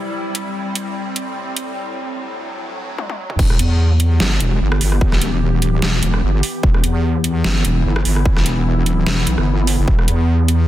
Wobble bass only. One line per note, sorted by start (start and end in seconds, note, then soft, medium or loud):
3.39 3.58 E1 loud
3.59 4.19 E2 loud
4.20 4.39 G1 loud
4.40 4.59 E1 loud
4.61 4.79 G1 loud
4.81 5.20 G1 loud
5.22 5.64 E1 loud
5.64 5.81 D#1 loud
5.82 6.01 E1 medium
6.03 6.21 E1 loud
6.23 6.42 G1 loud
6.63 6.82 E1 loud
6.84 7.43 E2 loud
7.44 7.63 G1 loud
7.65 7.84 E1 loud
7.85 8.04 G1 loud
8.05 8.44 G1 loud
8.46 8.88 E1 loud
8.88 9.05 D#1 loud
9.07 9.25 E1 loud
9.27 9.36 B1 loud
9.38 9.77 G1 loud
9.78 9.86 F#1 loud
9.88 10.06 E1 loud
10.08 10.67 E2 loud